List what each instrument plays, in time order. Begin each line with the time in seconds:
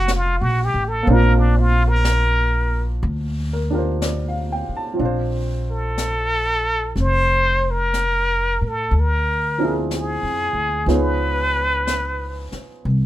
Already playing: upright bass F1, upright piano A#3 C4 D4 F4 A4, muted trumpet F#4
0.08 brush sweep, snare, hi-hat pedal
0.16 muted trumpet F4
0.41 upright bass A#1, muted trumpet F#4
0.65 muted trumpet G4
0.74 upright bass A1
0.88 muted trumpet A4
1.03 upright piano A#3, brush sweep
1.07 upright bass A#1, upright piano C4 D4
1.12 upright piano F4, muted trumpet A#4
1.39 muted trumpet D4
1.60 muted trumpet F4
1.89 muted trumpet A#4
2.05 brush sweep, snare, hi-hat pedal
3.02 upright bass D2, brush sweep
3.53 upright piano A#4
3.70 upright piano D4 F4 G4 A#4
3.78 upright piano C5
4.02 upright piano D5, brush sweep, snare, hi-hat pedal
4.29 upright piano F5
4.52 upright piano G5
4.69 muted upright bass stroke
4.77 upright piano A5
4.94 upright piano F3 C4
4.99 upright bass A#1, upright piano D4 F4, brush sweep
5.05 upright piano C5
5.72 muted trumpet A4
5.98 brush sweep, snare, hi-hat pedal
6.96 upright bass F1, brush sweep, snare
7.01 muted trumpet C5
7.71 muted trumpet A#4
7.94 brush sweep, snare, hi-hat pedal
8.61 upright bass A2
8.68 muted trumpet A4
8.91 upright bass D2, brush sweep
9.00 muted trumpet A#4
9.58 upright piano F3 C4 D4 E4
9.63 upright piano G#4
9.91 muted trumpet G#4, brush sweep, snare, hi-hat pedal
10.23 upright bass F2
10.53 upright bass D2
10.86 upright bass C#2, upright piano F3 B3 C#4 D#4 G#4, brush sweep, snare
10.95 muted trumpet B4
11.87 brush sweep, snare, hi-hat pedal
12.52 muted upright bass stroke, snare
12.85 upright bass C2, brush sweep